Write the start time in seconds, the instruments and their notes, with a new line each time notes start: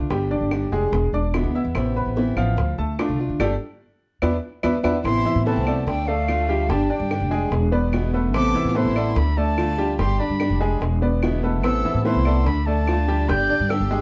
Already playing: steel-string acoustic guitar A3
0.10 upright bass G1, steel-string acoustic guitar D3 G3 D4 G4, grand piano G3 G4 G5, high bongo
0.31 grand piano D4 D5 D6, high bongo
0.41 upright bass G1
0.51 steel-string acoustic guitar D3 G3 D4 G4, high bongo, claves
0.72 upright bass F1, steel-string acoustic guitar G3 D4 G4, grand piano G#3 G#4 G#5, high bongo
0.92 upright bass E1, muted steel-string acoustic guitar stroke, high bongo
1.13 upright bass E1, grand piano D4 D5 D6, high bongo
1.34 steel-string acoustic guitar B2 D3 G#3 B3 E4, high bongo, low bongo, claves
1.44 upright bass D2
1.54 steel-string acoustic guitar G#3 B3 E4, grand piano E4 E5 E6
1.65 upright bass E2
1.75 upright bass A1, steel-string acoustic guitar C3 E3 B3 C4 E4, high bongo, claves
1.96 grand piano B4 B5
2.06 upright bass A1
2.16 steel-string acoustic guitar C3 E3 B3 C4 E4, high bongo
2.36 upright bass A1, grand piano F3 F4 F5, steel-string acoustic guitar B3 C4 E4, claves
2.57 upright bass D2, muted steel-string acoustic guitar stroke, high bongo
2.78 upright bass D2, grand piano A3 A4 A5
2.99 steel-string acoustic guitar D3 A3 D4 F4, grand piano D4 D5 D6, high bongo, low bongo, claves
3.09 upright bass C2
3.20 steel-string acoustic guitar A3 D4 F4
3.29 upright bass D3
3.39 upright bass G1, steel-string acoustic guitar G3 A3 D4, grand piano G4 A4 D5, low bongo, claves
4.22 upright bass E2, steel-string acoustic guitar B3 D4 E4, grand piano B4 D5 E5, low bongo, claves
4.63 upright bass E2, steel-string acoustic guitar B3 D4 E4, grand piano B4 D5 E5, low bongo, claves
4.83 upright bass E2, steel-string acoustic guitar B3 D4 E4, grand piano B4 D5 E5, low bongo, claves
5.04 upright bass A1, steel-string acoustic guitar C3 E3 B3 C4 E4, violin section E4, flute C6, high bongo, claves
5.25 grand piano E3 E4 E5, high bongo
5.35 upright bass A2
5.45 steel-string acoustic guitar C3 E3 B3 C4 E4, grand piano A3 A4 B4, violin section C4, flute A5, high bongo
5.56 upright bass C2
5.66 grand piano A3 A4 D5, steel-string acoustic guitar B3 C4 E4, high bongo, claves
5.87 upright bass D2, violin section D4, flute G5, muted steel-string acoustic guitar stroke, high bongo
6.07 violin section A3, grand piano A3 A4 D5, flute F5, high bongo
6.28 steel-string acoustic guitar D3 A3 D4 F4, high bongo, low bongo, claves
6.49 grand piano G3 G4 G5, steel-string acoustic guitar A3 D4 F4
6.69 upright bass G1, steel-string acoustic guitar D3 G3 D4 G4, grand piano G3 G4 G5, violin section D4, flute A5, high bongo
6.89 violin section D4, grand piano D4 D5, flute G5, high bongo
7.00 upright bass G2
7.10 steel-string acoustic guitar D3 G3 D4 G4, high bongo, claves
7.20 upright bass F1
7.31 steel-string acoustic guitar G3 D4 G4, grand piano G#3 G#4 G#5, high bongo
7.51 upright bass E1, muted steel-string acoustic guitar stroke, high bongo
7.72 grand piano B3 B4 D5, high bongo
7.92 steel-string acoustic guitar B2 D3 G#3 B3 E4, high bongo, low bongo, claves
8.13 steel-string acoustic guitar G#3 B3 E4, grand piano A3 A4 B4
8.34 upright bass A1, steel-string acoustic guitar C3 E3 B3 C4 E4, violin section A4, flute D6, high bongo, claves
8.55 grand piano E3 E4 E5, high bongo
8.64 upright bass A2, violin section F4
8.69 flute D6
8.75 steel-string acoustic guitar C3 E3 B3 C4 E4, grand piano A3 A4 B4, violin section E4, flute C6, high bongo
8.85 upright bass A1
8.96 grand piano A3 A4 D5, steel-string acoustic guitar B3 C4 E4, high bongo, claves
9.16 upright bass D2, violin section D4, flute B5, muted steel-string acoustic guitar stroke, high bongo
9.37 grand piano A3 A4 D5, violin section D4, flute A5, high bongo
9.58 steel-string acoustic guitar D3 A3 D4 F4, high bongo, low bongo, claves
9.78 grand piano G3 G4 G5, steel-string acoustic guitar A3 D4 F4
9.98 upright bass G1, steel-string acoustic guitar D3 G3 D4 G4, grand piano G3 G4 G5, violin section G4, flute C6, high bongo
10.19 violin section D4, grand piano D4 D5, flute B5, high bongo
10.29 upright bass G2
10.40 steel-string acoustic guitar D3 G3 D4 G4, high bongo, claves
10.50 upright bass F1
10.60 steel-string acoustic guitar G3 D4 G4, grand piano G#3 G#4 G#5, high bongo
10.81 upright bass E1, muted steel-string acoustic guitar stroke, high bongo
11.02 grand piano B3 B4 D5, high bongo
11.22 steel-string acoustic guitar B2 D3 G#3 B3 E4, high bongo, low bongo, claves
11.43 steel-string acoustic guitar G#3 B3 E4, grand piano A3 A4 B4
11.63 upright bass A1, steel-string acoustic guitar C3 E3 B3 C4 E4, violin section A4, flute E6, high bongo, claves
11.85 grand piano E3 E4 E5, high bongo
11.94 upright bass A2
12.05 steel-string acoustic guitar C3 E3 B3 C4 E4, grand piano A3 A4 B4, violin section E4, flute C6, high bongo
12.15 upright bass C2
12.25 grand piano A3 A4 D5, steel-string acoustic guitar B3 C4 E4, high bongo, claves
12.46 upright bass D2, violin section D4, flute B5, muted steel-string acoustic guitar stroke, high bongo
12.66 grand piano A3 A4 D5, violin section D4, flute A5, high bongo
12.87 steel-string acoustic guitar D3 A3 D4 F4, high bongo, low bongo, claves
13.08 grand piano G3 G4 G5, steel-string acoustic guitar A3 D4 F4
13.29 upright bass G1, steel-string acoustic guitar D3 G3 D4 G4, grand piano G3 G4 G5, violin section D5, flute G6, high bongo
13.49 grand piano D4 D5, high bongo
13.60 upright bass G2
13.70 steel-string acoustic guitar D3 G3 D4 G4, violin section G4, flute E6, high bongo, claves
13.80 upright bass G1
13.91 steel-string acoustic guitar G3 D4 G4, grand piano G#3 G#4 G#5, high bongo